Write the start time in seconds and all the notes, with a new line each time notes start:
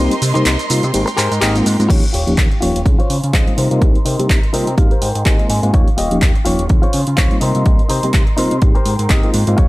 Already playing: G3 A#3 D#4 G4 A#4 C5 D#5 C6
0.00 C4 D#4 G4
0.11 closed hi-hat, shaker
0.22 C3, open hi-hat, shaker
0.34 C3 G3 A#3 C4 D#4 G4 A#4 C5, closed hi-hat, shaker
0.46 C2, clap, closed hi-hat, ride, shaker
0.58 muted clean electric guitar stroke, closed hi-hat, shaker
0.70 C3 G3 A#3 C4 D#4 F4, open hi-hat, shaker
0.82 C3, muted clean electric guitar stroke, closed hi-hat, shaker
0.93 G#1 G#3 A#3 C4 D#4 G4 A#4 G5, closed hi-hat, ride, shaker
1.06 muted clean electric guitar stroke, closed hi-hat, shaker
1.17 G#2 G4 G#4 A#4 C5, clap, open hi-hat, shaker
1.31 G#2, closed hi-hat, shaker
1.41 G#1 G#3 A#3 C4 D#4 G4 G#4 A#4 D#5, clap, closed hi-hat, ride, shaker
1.55 G#3 A#3 C4 D#4 F4, closed hi-hat, shaker
1.65 G#2, muted clean electric guitar stroke, open hi-hat, shaker
1.79 G#2 G#3 A#3 C4 D#4 F4, closed hi-hat, shaker
1.89 D#2 F3 A#3 D#4 F4 G4 C#5 F5 C#6, kick, closed hi-hat, crash
2.04 closed hi-hat
2.13 D#1 F4 G4 C#5, open hi-hat
2.27 D#1 F3 A#3 C#4 D#4 G4, closed hi-hat
2.37 D#2, kick, clap, closed hi-hat
2.51 muted clean electric guitar stroke, closed hi-hat
2.61 D#1 F3 A#3 C#4 D#4 F4 G4 C#5, open hi-hat
2.76 D#1, closed hi-hat
2.85 C#2 F3 C4 C#4 D#4 F4 G#4 C6, kick, closed hi-hat
2.99 F4 C5 C#5, closed hi-hat
3.10 C#3, open hi-hat
3.24 C#3, closed hi-hat
3.33 C#2 F3 C4 C#4 D#4 F4 G#4 C5 D#5, kick, clap, closed hi-hat
3.46 G3 A#3 C4 D#4 F4, closed hi-hat
3.57 C3 D#4 A#4 C5 D#5, open hi-hat
3.70 C3 G3 A#3 C4 D#4 F4, closed hi-hat
3.81 C2 G3 A#3 C4 G4, kick, closed hi-hat
3.95 closed hi-hat
4.05 C3 D#4 A#4 C5, open hi-hat
4.19 C3 G3 A#3 C4 D#4 G4, closed hi-hat
4.30 C2, kick, clap, closed hi-hat
4.43 muted clean electric guitar stroke, closed hi-hat
4.53 C3 G3 A#3 C4 D#4 F4 A#4 C5 D#5, open hi-hat
4.67 C3, closed hi-hat
4.77 G#1 G#3 A#3 C4 D#4 G4 F5 C6, kick, closed hi-hat
4.91 G4 A#4 C5, closed hi-hat
5.01 G#2 G5, open hi-hat
5.15 G#2, closed hi-hat
5.25 G#1 G#3 A#3 C4 D#4 G4 A#4 D#5 G#5, kick, clap, closed hi-hat
5.38 G#3 A#3 C4 D#4 F4, closed hi-hat
5.50 G#2 G#5, open hi-hat
5.62 G#2 G#3 A#3 C4 D#4 F4, muted clean electric guitar stroke, closed hi-hat
5.73 D#2 F3 A#3 F4 G4 C#5 F5 C#6, kick, closed hi-hat
5.88 closed hi-hat
5.97 D#1 F4 G4 D#5, open hi-hat
6.10 D#1 F3 A#3 C#4 D#4 G4, closed hi-hat
6.22 D#2, kick, clap, closed hi-hat
6.34 muted clean electric guitar stroke, closed hi-hat
6.45 D#1 F3 A#3 C#4 D#4 F4 G4 C#5, open hi-hat
6.59 D#1, closed hi-hat
6.69 C#2 F3 C4 C#4 D#4 F4 G#4 C6, kick, closed hi-hat
6.82 F4 C5 C#5, closed hi-hat
6.93 C#3, open hi-hat
7.07 C#3, closed hi-hat
7.17 C#2 F3 C4 C#4 D#4 F4 G#4 C5 C#5, kick, clap, closed hi-hat
7.31 G3 A#3 C4 D#4 F4, closed hi-hat
7.41 C3 D#4 A#4 C5 D#5, open hi-hat
7.55 C3 G3 A#3 C4 D#4 F4, closed hi-hat
7.65 C2 G3 A#3 C4 D#4 G4, kick, closed hi-hat
7.79 closed hi-hat
7.89 C3 D#4 A#4 C5, open hi-hat
8.03 C3 G3 A#3 C4 D#4 G4, closed hi-hat
8.14 C2, kick, clap, closed hi-hat
8.26 muted clean electric guitar stroke, closed hi-hat
8.37 C3 G3 A#3 C4 D#4 F4 A#4 C5, open hi-hat
8.51 C3, closed hi-hat
8.61 G#1 G#3 A#3 C4 D#4 G4 A#4 G5, kick, closed hi-hat
8.75 G4 A#4 C5, closed hi-hat
8.86 G#2, open hi-hat
8.99 G#2, closed hi-hat
9.09 G#1 G#3 A#3 C4 D#4 G4 A#4 D#5, kick, clap, closed hi-hat
9.23 G#3 A#3 C4 D#4 F4, closed hi-hat
9.34 G#2, open hi-hat
9.47 G#2 G#3 A#3 C4 D#4 F4, muted clean electric guitar stroke, closed hi-hat
9.57 D#2 F4 G4 C#5 F5 C#6, kick, closed hi-hat